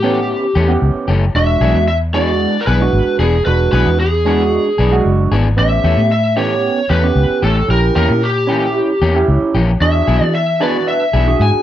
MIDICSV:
0, 0, Header, 1, 6, 480
1, 0, Start_track
1, 0, Tempo, 529101
1, 1218, Time_signature, 4, 2, 24, 8
1, 10545, End_track
2, 0, Start_track
2, 0, Title_t, "Lead electric guitar"
2, 0, Program_c, 0, 29
2, 0, Note_on_c, 0, 67, 69
2, 712, Note_off_c, 0, 67, 0
2, 1233, Note_on_c, 0, 76, 102
2, 1673, Note_off_c, 0, 76, 0
2, 1706, Note_on_c, 0, 76, 97
2, 1770, Note_off_c, 0, 76, 0
2, 1945, Note_on_c, 0, 74, 94
2, 2368, Note_on_c, 0, 70, 67
2, 2371, Note_off_c, 0, 74, 0
2, 2415, Note_off_c, 0, 70, 0
2, 2418, Note_on_c, 0, 71, 88
2, 2865, Note_off_c, 0, 71, 0
2, 2899, Note_on_c, 0, 68, 70
2, 3131, Note_off_c, 0, 68, 0
2, 3134, Note_on_c, 0, 71, 90
2, 3366, Note_off_c, 0, 71, 0
2, 3377, Note_on_c, 0, 71, 73
2, 3625, Note_off_c, 0, 71, 0
2, 3631, Note_on_c, 0, 68, 77
2, 4549, Note_off_c, 0, 68, 0
2, 5071, Note_on_c, 0, 76, 96
2, 5541, Note_off_c, 0, 76, 0
2, 5552, Note_on_c, 0, 76, 93
2, 5775, Note_off_c, 0, 76, 0
2, 5779, Note_on_c, 0, 73, 91
2, 6261, Note_on_c, 0, 71, 88
2, 6274, Note_off_c, 0, 73, 0
2, 6744, Note_off_c, 0, 71, 0
2, 6748, Note_on_c, 0, 69, 73
2, 6988, Note_off_c, 0, 69, 0
2, 6991, Note_on_c, 0, 70, 94
2, 7214, Note_off_c, 0, 70, 0
2, 7225, Note_on_c, 0, 70, 82
2, 7467, Note_on_c, 0, 67, 72
2, 7470, Note_off_c, 0, 70, 0
2, 8387, Note_off_c, 0, 67, 0
2, 8906, Note_on_c, 0, 76, 88
2, 9381, Note_off_c, 0, 76, 0
2, 9392, Note_on_c, 0, 76, 91
2, 9631, Note_off_c, 0, 76, 0
2, 9635, Note_on_c, 0, 74, 76
2, 9869, Note_off_c, 0, 74, 0
2, 9873, Note_on_c, 0, 76, 79
2, 10359, Note_off_c, 0, 76, 0
2, 10359, Note_on_c, 0, 80, 100
2, 10545, Note_off_c, 0, 80, 0
2, 10545, End_track
3, 0, Start_track
3, 0, Title_t, "Tine electric piano"
3, 0, Program_c, 1, 4
3, 29, Note_on_c, 1, 59, 73
3, 31, Note_on_c, 1, 61, 64
3, 37, Note_on_c, 1, 67, 80
3, 409, Note_off_c, 1, 59, 0
3, 410, Note_off_c, 1, 61, 0
3, 413, Note_off_c, 1, 67, 0
3, 616, Note_on_c, 1, 59, 72
3, 624, Note_on_c, 1, 61, 66
3, 628, Note_on_c, 1, 67, 80
3, 1002, Note_off_c, 1, 59, 0
3, 1006, Note_off_c, 1, 61, 0
3, 1008, Note_off_c, 1, 67, 0
3, 1224, Note_on_c, 1, 56, 67
3, 1226, Note_on_c, 1, 62, 62
3, 1233, Note_on_c, 1, 66, 73
3, 1683, Note_off_c, 1, 56, 0
3, 1684, Note_off_c, 1, 62, 0
3, 1688, Note_off_c, 1, 66, 0
3, 1936, Note_on_c, 1, 56, 71
3, 1946, Note_on_c, 1, 62, 62
3, 1949, Note_on_c, 1, 66, 78
3, 2323, Note_off_c, 1, 56, 0
3, 2328, Note_off_c, 1, 62, 0
3, 2329, Note_off_c, 1, 66, 0
3, 2542, Note_on_c, 1, 56, 60
3, 2551, Note_on_c, 1, 62, 58
3, 2557, Note_on_c, 1, 66, 71
3, 2925, Note_off_c, 1, 56, 0
3, 2930, Note_off_c, 1, 62, 0
3, 2933, Note_off_c, 1, 66, 0
3, 3146, Note_on_c, 1, 56, 70
3, 3148, Note_on_c, 1, 62, 62
3, 3154, Note_on_c, 1, 66, 78
3, 3604, Note_off_c, 1, 56, 0
3, 3606, Note_off_c, 1, 62, 0
3, 3609, Note_off_c, 1, 66, 0
3, 3858, Note_on_c, 1, 56, 73
3, 3862, Note_on_c, 1, 62, 67
3, 3868, Note_on_c, 1, 66, 84
3, 4244, Note_off_c, 1, 56, 0
3, 4246, Note_off_c, 1, 62, 0
3, 4249, Note_off_c, 1, 66, 0
3, 4460, Note_on_c, 1, 56, 72
3, 4463, Note_on_c, 1, 62, 68
3, 4468, Note_on_c, 1, 66, 88
3, 4845, Note_off_c, 1, 56, 0
3, 4846, Note_off_c, 1, 62, 0
3, 4849, Note_off_c, 1, 66, 0
3, 5050, Note_on_c, 1, 59, 67
3, 5058, Note_on_c, 1, 61, 59
3, 5065, Note_on_c, 1, 67, 71
3, 5517, Note_off_c, 1, 59, 0
3, 5521, Note_off_c, 1, 61, 0
3, 5524, Note_off_c, 1, 67, 0
3, 5772, Note_on_c, 1, 59, 71
3, 5776, Note_on_c, 1, 61, 63
3, 5782, Note_on_c, 1, 67, 79
3, 6161, Note_off_c, 1, 59, 0
3, 6164, Note_off_c, 1, 61, 0
3, 6167, Note_off_c, 1, 67, 0
3, 6373, Note_on_c, 1, 59, 62
3, 6379, Note_on_c, 1, 61, 63
3, 6385, Note_on_c, 1, 67, 66
3, 6761, Note_off_c, 1, 59, 0
3, 6765, Note_off_c, 1, 61, 0
3, 6767, Note_off_c, 1, 67, 0
3, 6969, Note_on_c, 1, 61, 63
3, 6981, Note_on_c, 1, 64, 62
3, 6986, Note_on_c, 1, 67, 72
3, 7437, Note_off_c, 1, 61, 0
3, 7443, Note_off_c, 1, 64, 0
3, 7445, Note_off_c, 1, 67, 0
3, 7685, Note_on_c, 1, 61, 71
3, 7696, Note_on_c, 1, 64, 66
3, 7698, Note_on_c, 1, 67, 83
3, 8078, Note_off_c, 1, 61, 0
3, 8083, Note_off_c, 1, 64, 0
3, 8084, Note_off_c, 1, 67, 0
3, 8299, Note_on_c, 1, 61, 77
3, 8309, Note_on_c, 1, 64, 72
3, 8314, Note_on_c, 1, 67, 83
3, 8684, Note_off_c, 1, 61, 0
3, 8689, Note_off_c, 1, 64, 0
3, 8691, Note_off_c, 1, 67, 0
3, 8902, Note_on_c, 1, 62, 73
3, 8906, Note_on_c, 1, 66, 65
3, 8916, Note_on_c, 1, 68, 81
3, 9362, Note_off_c, 1, 62, 0
3, 9364, Note_off_c, 1, 66, 0
3, 9369, Note_off_c, 1, 68, 0
3, 9619, Note_on_c, 1, 62, 75
3, 9625, Note_on_c, 1, 66, 71
3, 9633, Note_on_c, 1, 71, 84
3, 10003, Note_off_c, 1, 62, 0
3, 10006, Note_off_c, 1, 66, 0
3, 10011, Note_off_c, 1, 71, 0
3, 10222, Note_on_c, 1, 62, 64
3, 10228, Note_on_c, 1, 66, 61
3, 10232, Note_on_c, 1, 68, 75
3, 10545, Note_off_c, 1, 62, 0
3, 10545, Note_off_c, 1, 66, 0
3, 10545, Note_off_c, 1, 68, 0
3, 10545, End_track
4, 0, Start_track
4, 0, Title_t, "Clean electric guitar"
4, 0, Program_c, 2, 27
4, 23, Note_on_c, 2, 67, 59
4, 34, Note_on_c, 2, 61, 61
4, 38, Note_on_c, 2, 57, 57
4, 45, Note_on_c, 2, 52, 50
4, 166, Note_off_c, 2, 67, 0
4, 171, Note_off_c, 2, 61, 0
4, 173, Note_off_c, 2, 57, 0
4, 176, Note_off_c, 2, 52, 0
4, 501, Note_on_c, 2, 67, 70
4, 510, Note_on_c, 2, 61, 70
4, 514, Note_on_c, 2, 57, 61
4, 519, Note_on_c, 2, 52, 63
4, 644, Note_off_c, 2, 67, 0
4, 649, Note_off_c, 2, 61, 0
4, 651, Note_off_c, 2, 57, 0
4, 653, Note_off_c, 2, 52, 0
4, 978, Note_on_c, 2, 67, 75
4, 988, Note_on_c, 2, 61, 65
4, 993, Note_on_c, 2, 57, 63
4, 1000, Note_on_c, 2, 52, 62
4, 1123, Note_off_c, 2, 67, 0
4, 1128, Note_off_c, 2, 61, 0
4, 1130, Note_off_c, 2, 57, 0
4, 1134, Note_off_c, 2, 52, 0
4, 1462, Note_on_c, 2, 68, 69
4, 1469, Note_on_c, 2, 62, 60
4, 1476, Note_on_c, 2, 59, 57
4, 1481, Note_on_c, 2, 52, 61
4, 1605, Note_off_c, 2, 68, 0
4, 1608, Note_off_c, 2, 62, 0
4, 1612, Note_off_c, 2, 59, 0
4, 1614, Note_off_c, 2, 52, 0
4, 1942, Note_on_c, 2, 68, 66
4, 1949, Note_on_c, 2, 62, 64
4, 1955, Note_on_c, 2, 59, 54
4, 1963, Note_on_c, 2, 52, 58
4, 2085, Note_off_c, 2, 68, 0
4, 2089, Note_off_c, 2, 62, 0
4, 2091, Note_off_c, 2, 59, 0
4, 2095, Note_off_c, 2, 52, 0
4, 2421, Note_on_c, 2, 68, 64
4, 2431, Note_on_c, 2, 62, 59
4, 2437, Note_on_c, 2, 59, 59
4, 2443, Note_on_c, 2, 52, 50
4, 2565, Note_off_c, 2, 68, 0
4, 2569, Note_off_c, 2, 62, 0
4, 2573, Note_off_c, 2, 59, 0
4, 2576, Note_off_c, 2, 52, 0
4, 2899, Note_on_c, 2, 68, 68
4, 2907, Note_on_c, 2, 62, 56
4, 2912, Note_on_c, 2, 59, 52
4, 2920, Note_on_c, 2, 52, 56
4, 3044, Note_off_c, 2, 68, 0
4, 3048, Note_off_c, 2, 62, 0
4, 3050, Note_off_c, 2, 59, 0
4, 3054, Note_off_c, 2, 52, 0
4, 3382, Note_on_c, 2, 68, 73
4, 3389, Note_on_c, 2, 62, 60
4, 3398, Note_on_c, 2, 59, 68
4, 3404, Note_on_c, 2, 52, 57
4, 3525, Note_off_c, 2, 68, 0
4, 3529, Note_off_c, 2, 62, 0
4, 3533, Note_off_c, 2, 59, 0
4, 3536, Note_off_c, 2, 52, 0
4, 3864, Note_on_c, 2, 68, 64
4, 3874, Note_on_c, 2, 62, 60
4, 3880, Note_on_c, 2, 59, 58
4, 3885, Note_on_c, 2, 52, 51
4, 4007, Note_off_c, 2, 68, 0
4, 4011, Note_off_c, 2, 62, 0
4, 4015, Note_off_c, 2, 59, 0
4, 4017, Note_off_c, 2, 52, 0
4, 4338, Note_on_c, 2, 68, 70
4, 4348, Note_on_c, 2, 62, 72
4, 4354, Note_on_c, 2, 59, 67
4, 4360, Note_on_c, 2, 52, 56
4, 4484, Note_off_c, 2, 68, 0
4, 4488, Note_off_c, 2, 62, 0
4, 4492, Note_off_c, 2, 59, 0
4, 4494, Note_off_c, 2, 52, 0
4, 4823, Note_on_c, 2, 68, 77
4, 4831, Note_on_c, 2, 62, 70
4, 4837, Note_on_c, 2, 59, 64
4, 4842, Note_on_c, 2, 52, 61
4, 4966, Note_off_c, 2, 68, 0
4, 4970, Note_off_c, 2, 62, 0
4, 4973, Note_off_c, 2, 59, 0
4, 4976, Note_off_c, 2, 52, 0
4, 5300, Note_on_c, 2, 67, 65
4, 5305, Note_on_c, 2, 61, 62
4, 5313, Note_on_c, 2, 57, 60
4, 5318, Note_on_c, 2, 52, 60
4, 5445, Note_off_c, 2, 67, 0
4, 5447, Note_off_c, 2, 61, 0
4, 5451, Note_off_c, 2, 57, 0
4, 5454, Note_off_c, 2, 52, 0
4, 5777, Note_on_c, 2, 67, 60
4, 5783, Note_on_c, 2, 61, 62
4, 5788, Note_on_c, 2, 57, 57
4, 5793, Note_on_c, 2, 52, 51
4, 5923, Note_off_c, 2, 67, 0
4, 5926, Note_off_c, 2, 61, 0
4, 5929, Note_off_c, 2, 57, 0
4, 5931, Note_off_c, 2, 52, 0
4, 6256, Note_on_c, 2, 67, 68
4, 6265, Note_on_c, 2, 61, 60
4, 6272, Note_on_c, 2, 57, 56
4, 6278, Note_on_c, 2, 52, 56
4, 6403, Note_off_c, 2, 67, 0
4, 6407, Note_off_c, 2, 61, 0
4, 6411, Note_off_c, 2, 57, 0
4, 6414, Note_off_c, 2, 52, 0
4, 6735, Note_on_c, 2, 67, 61
4, 6744, Note_on_c, 2, 61, 62
4, 6751, Note_on_c, 2, 57, 57
4, 6757, Note_on_c, 2, 52, 50
4, 6882, Note_off_c, 2, 67, 0
4, 6887, Note_off_c, 2, 61, 0
4, 6890, Note_off_c, 2, 57, 0
4, 6893, Note_off_c, 2, 52, 0
4, 7218, Note_on_c, 2, 67, 68
4, 7225, Note_on_c, 2, 61, 57
4, 7232, Note_on_c, 2, 58, 69
4, 7238, Note_on_c, 2, 52, 56
4, 7364, Note_off_c, 2, 67, 0
4, 7367, Note_off_c, 2, 61, 0
4, 7371, Note_off_c, 2, 58, 0
4, 7374, Note_off_c, 2, 52, 0
4, 7700, Note_on_c, 2, 67, 65
4, 7707, Note_on_c, 2, 61, 63
4, 7712, Note_on_c, 2, 58, 54
4, 7719, Note_on_c, 2, 52, 56
4, 7844, Note_off_c, 2, 67, 0
4, 7848, Note_off_c, 2, 61, 0
4, 7851, Note_off_c, 2, 58, 0
4, 7854, Note_off_c, 2, 52, 0
4, 8180, Note_on_c, 2, 67, 75
4, 8187, Note_on_c, 2, 61, 73
4, 8193, Note_on_c, 2, 58, 64
4, 8202, Note_on_c, 2, 52, 60
4, 8324, Note_off_c, 2, 67, 0
4, 8328, Note_off_c, 2, 61, 0
4, 8331, Note_off_c, 2, 58, 0
4, 8335, Note_off_c, 2, 52, 0
4, 8660, Note_on_c, 2, 67, 75
4, 8667, Note_on_c, 2, 61, 68
4, 8675, Note_on_c, 2, 58, 65
4, 8681, Note_on_c, 2, 52, 58
4, 8804, Note_off_c, 2, 67, 0
4, 8808, Note_off_c, 2, 61, 0
4, 8812, Note_off_c, 2, 58, 0
4, 8815, Note_off_c, 2, 52, 0
4, 9140, Note_on_c, 2, 68, 69
4, 9147, Note_on_c, 2, 62, 72
4, 9151, Note_on_c, 2, 59, 65
4, 9158, Note_on_c, 2, 52, 58
4, 9284, Note_off_c, 2, 68, 0
4, 9288, Note_off_c, 2, 62, 0
4, 9289, Note_off_c, 2, 59, 0
4, 9293, Note_off_c, 2, 52, 0
4, 9623, Note_on_c, 2, 68, 70
4, 9632, Note_on_c, 2, 62, 65
4, 9637, Note_on_c, 2, 59, 62
4, 9643, Note_on_c, 2, 52, 55
4, 9765, Note_off_c, 2, 68, 0
4, 9769, Note_off_c, 2, 62, 0
4, 9772, Note_off_c, 2, 59, 0
4, 9775, Note_off_c, 2, 52, 0
4, 10101, Note_on_c, 2, 68, 64
4, 10107, Note_on_c, 2, 62, 57
4, 10116, Note_on_c, 2, 59, 57
4, 10123, Note_on_c, 2, 52, 58
4, 10244, Note_off_c, 2, 68, 0
4, 10247, Note_off_c, 2, 62, 0
4, 10251, Note_off_c, 2, 59, 0
4, 10255, Note_off_c, 2, 52, 0
4, 10545, End_track
5, 0, Start_track
5, 0, Title_t, "Fingered electric bass"
5, 0, Program_c, 3, 33
5, 0, Note_on_c, 3, 45, 76
5, 309, Note_off_c, 3, 45, 0
5, 505, Note_on_c, 3, 40, 89
5, 687, Note_off_c, 3, 40, 0
5, 743, Note_on_c, 3, 37, 89
5, 834, Note_off_c, 3, 37, 0
5, 978, Note_on_c, 3, 30, 83
5, 1163, Note_off_c, 3, 30, 0
5, 1221, Note_on_c, 3, 28, 84
5, 1405, Note_off_c, 3, 28, 0
5, 1458, Note_on_c, 3, 35, 97
5, 1551, Note_off_c, 3, 35, 0
5, 1577, Note_on_c, 3, 40, 75
5, 2224, Note_off_c, 3, 40, 0
5, 2424, Note_on_c, 3, 35, 79
5, 2607, Note_off_c, 3, 35, 0
5, 2657, Note_on_c, 3, 32, 103
5, 2751, Note_off_c, 3, 32, 0
5, 2894, Note_on_c, 3, 28, 82
5, 3081, Note_off_c, 3, 28, 0
5, 3144, Note_on_c, 3, 28, 82
5, 3327, Note_off_c, 3, 28, 0
5, 3380, Note_on_c, 3, 35, 96
5, 3473, Note_off_c, 3, 35, 0
5, 3504, Note_on_c, 3, 40, 78
5, 4149, Note_off_c, 3, 40, 0
5, 4344, Note_on_c, 3, 35, 84
5, 4527, Note_off_c, 3, 35, 0
5, 4585, Note_on_c, 3, 30, 78
5, 4799, Note_off_c, 3, 30, 0
5, 4821, Note_on_c, 3, 32, 75
5, 5037, Note_off_c, 3, 32, 0
5, 5058, Note_on_c, 3, 33, 81
5, 5244, Note_off_c, 3, 33, 0
5, 5296, Note_on_c, 3, 40, 91
5, 5391, Note_off_c, 3, 40, 0
5, 5417, Note_on_c, 3, 45, 78
5, 6065, Note_off_c, 3, 45, 0
5, 6259, Note_on_c, 3, 40, 80
5, 6444, Note_off_c, 3, 40, 0
5, 6490, Note_on_c, 3, 37, 99
5, 6587, Note_off_c, 3, 37, 0
5, 6736, Note_on_c, 3, 33, 81
5, 6923, Note_off_c, 3, 33, 0
5, 6973, Note_on_c, 3, 34, 88
5, 7161, Note_off_c, 3, 34, 0
5, 7221, Note_on_c, 3, 40, 91
5, 7314, Note_off_c, 3, 40, 0
5, 7345, Note_on_c, 3, 46, 73
5, 7989, Note_off_c, 3, 46, 0
5, 8179, Note_on_c, 3, 40, 83
5, 8364, Note_off_c, 3, 40, 0
5, 8421, Note_on_c, 3, 37, 97
5, 8514, Note_off_c, 3, 37, 0
5, 8659, Note_on_c, 3, 34, 83
5, 8844, Note_off_c, 3, 34, 0
5, 8896, Note_on_c, 3, 40, 85
5, 9082, Note_off_c, 3, 40, 0
5, 9141, Note_on_c, 3, 35, 94
5, 9233, Note_off_c, 3, 35, 0
5, 9261, Note_on_c, 3, 52, 82
5, 9905, Note_off_c, 3, 52, 0
5, 10102, Note_on_c, 3, 35, 90
5, 10285, Note_off_c, 3, 35, 0
5, 10339, Note_on_c, 3, 44, 97
5, 10431, Note_off_c, 3, 44, 0
5, 10545, End_track
6, 0, Start_track
6, 0, Title_t, "Muted fingered electric bass strokes"
6, 6620, Note_on_c, 9, 29, 31
6, 6711, Note_off_c, 9, 29, 0
6, 10467, Note_on_c, 9, 29, 30
6, 10545, Note_off_c, 9, 29, 0
6, 10545, End_track
0, 0, End_of_file